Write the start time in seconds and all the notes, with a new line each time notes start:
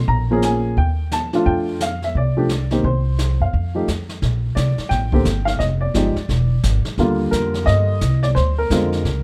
0.08 A#1 A#5, brush sweep, kick
0.31 F3 A#3 C#4 G#4
0.42 G#5, snare, hi-hat pedal
0.77 D#2 G5, brush sweep, kick
1.11 A5, snare, hi-hat pedal
1.33 F3 A3 D4 F4, snare
1.46 F2 G5, brush sweep, kick
1.80 F5, snare, hi-hat pedal
2.02 E5, snare
2.15 C2 D5, brush sweep, kick
2.37 F3 A3 D4 G4
2.49 snare, hi-hat pedal
2.71 D#3 A#3 C4 G4, snare
2.84 C2 C5, brush sweep, kick
3.19 snare, hi-hat pedal
3.40 F#2 F5
3.53 F2, brush sweep, kick
3.75 F3 A3 D#4 G4
3.88 F2, snare, hi-hat pedal
4.09 snare
4.22 A#1, brush sweep, kick, snare
4.55 C2 D5, kick, snare, hi-hat pedal
4.78 muted upright bass stroke, snare
4.89 A1 G5, brush sweep, kick, snare
5.12 D3 A#3 C4 G4, kick
5.25 G1, kick, snare, hi-hat pedal
5.45 F5, snare
5.59 F1 D#5, brush sweep, kick, snare
5.81 D5
5.94 G1 F3 G#3 D#4 G4, kick, snare, hi-hat pedal
6.16 muted upright bass stroke, snare
6.29 E1, brush sweep, kick, snare
6.63 G#1, kick, snare, hi-hat pedal
6.85 muted upright bass stroke, snare
6.97 D#2 D3 G3 A#3 F4, brush sweep, kick, snare
7.31 F2 A#4, kick, snare, hi-hat pedal
7.54 snare
7.66 G2 D#5, brush sweep, kick, snare
8.01 C2, kick, snare, hi-hat pedal
8.23 D5, snare
8.35 D2 C5, brush sweep, kick, snare
8.58 A#4
8.70 F2 D3 G#3 C4 F4, kick, snare, hi-hat pedal
8.92 snare
9.05 C#2, brush sweep, kick, snare